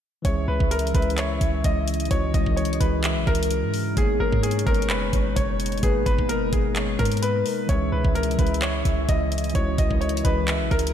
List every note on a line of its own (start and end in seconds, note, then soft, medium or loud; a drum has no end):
0.22 0.47 C#2 loud
0.22 3.93 C#3 medium
0.22 0.67 E3 loud
0.22 3.93 E3 medium
0.22 0.68 G#3 loud
0.22 10.93 G#3 medium
0.22 0.69 C#4 loud
0.22 3.93 E4 medium
0.22 0.44 C#5 medium
0.22 2.07 E5 loud
0.22 kick loud
0.22 closed hi-hat medium
0.27 0.69 E4 medium
0.27 0.70 G#4 loud
0.48 0.60 C#2 loud
0.48 0.67 B4 medium
0.60 0.93 C#2 loud
0.60 kick loud
0.71 0.91 A#4 medium
0.71 closed hi-hat medium
0.79 closed hi-hat medium
0.87 closed hi-hat medium
0.92 1.39 C#2 loud
0.92 1.52 E3 medium
0.92 1.52 G#3 medium
0.92 1.53 C#4 medium
0.92 1.14 B4 medium
0.92 kick loud
0.92 closed hi-hat medium
0.96 1.54 E4 medium
0.96 1.55 G#4 medium
1.02 closed hi-hat soft
1.10 closed hi-hat soft
1.18 1.62 C#5 medium
1.18 clap loud
1.18 closed hi-hat medium
1.41 1.63 C#2 loud
1.41 kick medium
1.41 closed hi-hat medium
1.64 2.09 C#2 loud
1.64 2.08 D#5 medium
1.64 kick loud
1.64 closed hi-hat medium
1.88 closed hi-hat medium
1.94 closed hi-hat medium
2.00 closed hi-hat medium
2.05 2.31 E3 loud
2.05 closed hi-hat soft
2.09 2.33 C#2 loud
2.09 2.32 G#3 loud
2.09 2.33 C#4 medium
2.09 2.33 E4 medium
2.09 2.30 C#5 medium
2.09 3.00 D#5 loud
2.09 kick loud
2.09 closed hi-hat medium
2.14 2.34 F#4 loud
2.34 2.79 C#2 loud
2.34 2.54 D#5 medium
2.34 kick loud
2.34 closed hi-hat medium
2.44 2.67 E3 medium
2.44 2.67 G#3 medium
2.44 2.68 C#4 medium
2.44 kick loud
2.48 2.69 E4 medium
2.48 2.70 A#4 medium
2.56 2.76 C#5 medium
2.56 closed hi-hat soft
2.65 closed hi-hat medium
2.73 closed hi-hat medium
2.78 3.18 C#2 loud
2.78 3.38 E3 medium
2.78 3.38 G#3 medium
2.78 3.39 C#4 medium
2.78 3.24 B4 medium
2.78 kick loud
2.78 closed hi-hat medium
2.82 3.40 E4 medium
2.82 3.41 G#4 medium
3.04 3.48 E5 medium
3.04 clap loud
3.04 closed hi-hat medium
3.16 3.27 B1 loud
3.27 3.64 C#2 loud
3.27 3.93 A#4 medium
3.27 kick medium
3.27 closed hi-hat medium
3.35 closed hi-hat medium
3.43 closed hi-hat medium
3.51 closed hi-hat medium
3.63 3.95 G#2 loud
3.74 open hi-hat medium
3.94 4.19 G#1 loud
3.94 7.65 B2 medium
3.94 4.39 G#3 loud
3.94 4.40 A#3 loud
3.94 4.41 B3 medium
3.94 7.65 D#4 medium
3.94 4.17 G#4 medium
3.94 5.79 C#5 loud
3.94 kick loud
3.94 closed hi-hat medium
3.99 4.41 D#4 loud
3.99 4.42 G#4 loud
4.20 4.32 G#1 loud
4.20 4.40 A#4 medium
4.32 4.65 G#2 loud
4.32 kick loud
4.43 4.63 G#4 medium
4.43 closed hi-hat medium
4.51 closed hi-hat medium
4.59 closed hi-hat medium
4.63 4.91 G#1 loud
4.63 5.24 G#3 medium
4.63 5.25 B3 medium
4.63 4.86 A#4 loud
4.63 kick loud
4.63 closed hi-hat medium
4.68 5.26 D#4 medium
4.68 5.27 B4 medium
4.74 closed hi-hat soft
4.82 closed hi-hat soft
4.89 5.12 F#1 loud
4.89 5.33 B4 medium
4.89 clap loud
4.89 closed hi-hat medium
5.13 5.35 G#1 loud
5.13 kick medium
5.13 closed hi-hat medium
5.36 5.81 F#1 loud
5.36 5.80 C#5 medium
5.36 kick loud
5.36 closed hi-hat medium
5.60 closed hi-hat medium
5.66 closed hi-hat medium
5.72 closed hi-hat medium
5.78 6.03 G#3 loud
5.78 closed hi-hat soft
5.82 6.05 G#1 loud
5.82 6.04 A#3 loud
5.82 6.05 B3 medium
5.82 6.06 D#4 medium
5.82 6.02 G#4 medium
5.82 6.72 B4 loud
5.82 kick loud
5.82 closed hi-hat medium
5.86 6.06 B4 loud
6.06 6.43 G#1 loud
6.06 6.26 B4 medium
6.06 kick loud
6.06 closed hi-hat medium
6.16 6.39 G#3 medium
6.16 6.40 A#3 medium
6.16 6.40 B3 medium
6.16 kick loud
6.21 6.41 D#4 medium
6.21 6.42 G#4 medium
6.29 6.49 A#4 medium
6.29 closed hi-hat medium
6.42 6.52 F#1 loud
6.50 6.97 G#1 loud
6.50 7.10 G#3 medium
6.50 7.11 B3 medium
6.50 6.96 G#4 medium
6.50 7.11 A#4 medium
6.50 kick loud
6.50 closed hi-hat medium
6.54 7.12 D#4 medium
6.54 7.13 B4 medium
6.76 7.20 C#5 medium
6.76 clap loud
6.76 closed hi-hat medium
6.99 7.44 G#2 loud
6.99 7.19 A#4 medium
6.99 kick medium
6.99 closed hi-hat medium
7.05 closed hi-hat medium
7.12 closed hi-hat medium
7.17 closed hi-hat medium
7.22 7.66 B4 medium
7.22 7.45 B4 medium
7.22 closed hi-hat loud
7.46 7.68 A#4 medium
7.46 open hi-hat medium
7.66 7.91 C#2 loud
7.66 10.93 C#3 medium
7.66 8.11 E3 loud
7.66 10.93 E3 medium
7.66 8.12 G#3 medium
7.66 8.13 C#4 medium
7.66 10.93 E4 medium
7.66 7.88 C#5 medium
7.66 9.51 E5 loud
7.66 kick loud
7.66 closed hi-hat medium
7.71 8.14 E4 medium
7.71 8.14 G#4 loud
7.92 8.04 C#2 loud
7.92 8.12 B4 medium
8.05 8.37 C#2 loud
8.05 kick loud
8.15 8.35 A#4 medium
8.15 closed hi-hat medium
8.23 closed hi-hat medium
8.31 closed hi-hat medium
8.36 8.83 C#2 loud
8.36 8.96 E3 medium
8.36 8.97 G#3 medium
8.36 8.97 C#4 medium
8.36 8.58 B4 medium
8.36 kick loud
8.36 closed hi-hat medium
8.40 8.98 E4 medium
8.40 8.99 G#4 medium
8.47 closed hi-hat soft
8.54 closed hi-hat soft
8.62 9.06 C#5 medium
8.62 clap loud
8.62 closed hi-hat medium
8.85 9.08 C#2 loud
8.85 kick medium
8.85 closed hi-hat medium
9.09 9.53 C#2 loud
9.09 9.53 D#5 medium
9.09 kick loud
9.09 closed hi-hat medium
9.32 closed hi-hat medium
9.38 closed hi-hat medium
9.44 closed hi-hat medium
9.50 9.75 E3 loud
9.50 closed hi-hat soft
9.54 9.77 C#2 loud
9.54 9.76 G#3 loud
9.54 9.77 C#4 medium
9.54 9.78 E4 medium
9.54 9.74 C#5 medium
9.54 10.44 D#5 loud
9.54 kick loud
9.54 closed hi-hat medium
9.58 9.78 F#4 loud
9.78 10.23 C#2 loud
9.78 9.98 D#5 medium
9.78 kick loud
9.78 closed hi-hat medium
9.88 10.11 E3 medium
9.88 10.12 G#3 medium
9.88 10.12 C#4 medium
9.88 kick loud
9.92 10.13 E4 medium
9.92 10.14 A#4 medium
10.01 10.21 C#5 medium
10.01 closed hi-hat soft
10.09 closed hi-hat medium
10.17 closed hi-hat medium
10.22 10.62 C#2 loud
10.22 10.82 E3 medium
10.22 10.83 G#3 medium
10.22 10.83 C#4 medium
10.22 10.68 B4 medium
10.22 kick loud
10.22 closed hi-hat loud
10.26 10.84 E4 medium
10.26 10.85 G#4 medium
10.48 10.92 E5 medium
10.48 clap loud
10.48 closed hi-hat medium
10.60 10.71 B1 loud
10.71 10.93 C#2 loud
10.71 10.93 A#4 medium
10.71 kick medium
10.71 closed hi-hat medium
10.79 closed hi-hat medium
10.87 closed hi-hat medium